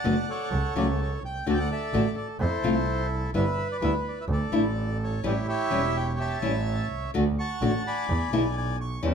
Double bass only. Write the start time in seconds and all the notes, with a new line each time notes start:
0.05 F#1
0.52 C#2
0.76 C#2
1.23 C2
1.46 D2
1.93 A1
2.40 F2
2.64 C2
3.34 G1
3.81 D2
4.28 D2
4.52 A1
5.23 A1
5.71 E1
6.42 A1
6.91 C2
7.14 D2
7.62 A1
8.09 E2
8.33 B1
9.03 E2